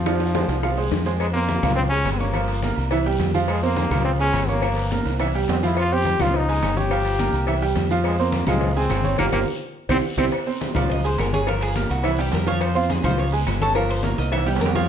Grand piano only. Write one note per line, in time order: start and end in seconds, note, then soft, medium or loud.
0.06 0.29 F3 medium
0.06 0.30 F4 medium
0.06 0.30 F5 medium
0.35 0.58 G#3 medium
0.35 0.58 G#4 medium
0.35 0.59 C5 medium
0.63 0.75 F3 medium
0.63 0.75 F4 medium
0.63 0.75 F5 medium
0.77 1.00 G#3 medium
0.77 1.01 G#4 medium
0.77 1.01 C5 medium
1.06 1.17 G#3 medium
1.06 1.18 G#4 medium
1.06 1.18 C5 medium
1.35 1.58 C4 medium
1.35 1.58 C5 medium
1.35 1.58 C6 medium
1.63 1.86 F3 medium
1.63 1.86 F4 medium
1.63 1.87 F5 medium
1.91 2.15 G#3 medium
1.91 2.15 G#4 medium
1.91 2.15 G#5 medium
2.20 2.32 C#4 medium
2.20 2.32 C#5 medium
2.20 2.32 C#6 medium
2.34 2.58 F3 medium
2.34 2.58 F4 medium
2.34 2.58 F5 medium
2.63 2.86 A#3 medium
2.63 2.86 A#4 medium
2.63 2.87 A#5 medium
2.92 3.03 E3 medium
2.92 3.03 E4 medium
2.92 3.03 E5 medium
3.06 3.29 G3 medium
3.06 3.29 G4 medium
3.06 3.29 G5 medium
3.35 3.58 F3 loud
3.35 3.58 F4 medium
3.35 3.58 F5 medium
3.63 3.86 C4 medium
3.63 3.86 C5 medium
3.63 3.86 C6 medium
3.92 4.15 F3 medium
3.92 4.15 F4 medium
3.92 4.15 F5 medium
4.20 4.43 G#3 medium
4.20 4.43 G#4 medium
4.20 4.43 G#5 medium
4.48 4.60 C#4 medium
4.48 4.60 C#5 medium
4.48 4.60 C#6 medium
4.63 4.86 F3 medium
4.63 4.86 F4 medium
4.63 4.86 F5 medium
4.92 5.15 A#3 medium
4.92 5.15 A#4 medium
4.92 5.15 A#5 medium
5.21 5.32 E3 medium
5.21 5.32 E4 medium
5.21 5.32 E5 medium
5.35 5.58 G3 medium
5.35 5.58 G4 medium
5.35 5.58 G5 medium
5.63 5.86 F3 medium
5.63 5.86 F4 medium
5.63 5.86 F5 medium
5.92 6.15 C4 medium
5.92 6.15 C5 medium
5.92 6.15 C6 medium
6.20 6.43 F3 medium
6.20 6.43 F4 medium
6.20 6.43 F5 medium
6.49 6.72 G#3 medium
6.49 6.72 G#4 medium
6.49 6.72 G#5 medium
6.76 6.88 C#4 medium
6.76 6.88 C#5 medium
6.76 6.88 C#6 medium
6.91 7.14 F3 medium
6.91 7.14 F4 medium
6.91 7.14 F5 medium
7.19 7.42 A#3 medium
7.19 7.43 A#4 medium
7.19 7.43 A#5 medium
7.47 7.59 E3 medium
7.47 7.59 E4 medium
7.47 7.59 E5 medium
7.62 7.85 G3 medium
7.62 7.85 G4 medium
7.62 7.86 G5 medium
7.91 8.14 F3 medium
7.91 8.14 F4 loud
7.91 8.14 F5 loud
8.20 8.43 C4 medium
8.20 8.43 C5 medium
8.20 8.43 C6 medium
8.48 8.71 F3 medium
8.48 8.71 F4 medium
8.48 8.71 F5 medium
8.76 9.00 G#3 medium
8.76 9.00 G#4 medium
8.76 9.00 G#5 medium
9.04 9.16 C#4 medium
9.04 9.16 C#5 medium
9.04 9.16 C#6 medium
9.19 9.28 F4 medium
9.19 9.28 G4 medium
9.19 9.28 A#4 medium
9.33 9.42 F4 medium
9.33 9.42 G4 medium
9.33 9.42 A#4 medium
9.89 9.99 C4 loud
9.89 9.99 E4 medium
9.89 9.99 G4 loud
10.18 10.27 C4 loud
10.18 10.27 E4 loud
10.18 10.27 G4 loud
10.47 10.70 C4 medium
10.47 10.71 C5 medium
10.47 10.71 C6 medium
10.75 10.99 F3 medium
10.75 10.99 F4 medium
10.75 10.99 F5 medium
11.04 11.28 G#3 medium
11.04 11.28 G#4 medium
11.04 11.28 G#5 medium
11.33 11.45 C#4 medium
11.33 11.45 C#5 medium
11.33 11.45 C#6 medium
11.47 11.71 F3 medium
11.47 11.71 F4 medium
11.47 11.71 F5 medium
11.75 11.99 A#3 medium
11.75 11.99 A#4 medium
11.75 11.99 A#5 medium
12.04 12.16 E3 medium
12.04 12.16 E4 medium
12.04 12.16 E5 medium
12.18 12.42 G3 medium
12.18 12.42 G4 medium
12.18 12.42 G5 medium
12.47 12.70 F3 loud
12.47 12.70 F4 loud
12.47 12.70 F5 loud
12.75 12.99 C4 medium
12.75 12.99 C5 medium
12.75 12.99 C6 medium
13.04 13.27 F3 medium
13.04 13.28 F4 medium
13.04 13.28 F5 medium
13.33 13.56 G#3 medium
13.33 13.56 G#4 medium
13.33 13.56 G#5 medium
13.62 13.73 C#4 medium
13.62 13.73 C#5 medium
13.62 13.74 C#6 medium
13.76 13.99 F3 medium
13.76 13.99 F4 medium
13.76 13.99 F5 medium
14.04 14.27 A#3 medium
14.04 14.27 A#4 medium
14.04 14.28 A#5 medium
14.32 14.44 E3 medium
14.32 14.44 E4 medium
14.32 14.44 E5 medium
14.46 14.70 G3 medium
14.46 14.70 G4 medium
14.46 14.70 G5 medium
14.75 14.88 F3 loud
14.75 14.88 F4 medium
14.75 14.88 F5 medium